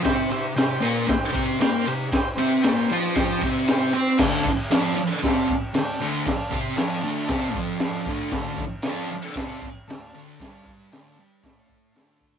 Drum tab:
CC |--------|--------|x-x-x-x-|x-x-x-x-|
RD |xxxxxxxx|xxxxxxxx|--------|--------|
SD |o-o-o-o-|o-o-o-o-|o-o-o-o-|o-o-o-o-|
BD |o---oo--|o---oo--|oo--oo--|oo--oo-o|

CC |x-x-x-x-|x-x-x-x-|
RD |--------|--------|
SD |o-o-o-o-|o-o-o-o-|
BD |oo--oo--|oo--oo-o|